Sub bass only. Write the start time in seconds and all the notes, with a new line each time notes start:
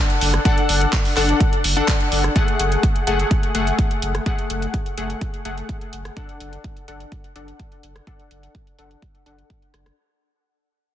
0.21 F#1
0.69 F#1
1.17 F#1
1.64 F#1
2.12 F#1
2.60 F#1
3.07 F#1
3.55 F#1
4.02 F#1
4.50 F#1
4.98 F#1
5.45 F#1
5.93 F#1
6.40 F#1
6.88 F#1
7.36 F#1
7.83 F#1
8.31 F#1
8.79 F#1
9.26 F#1
9.74 F#1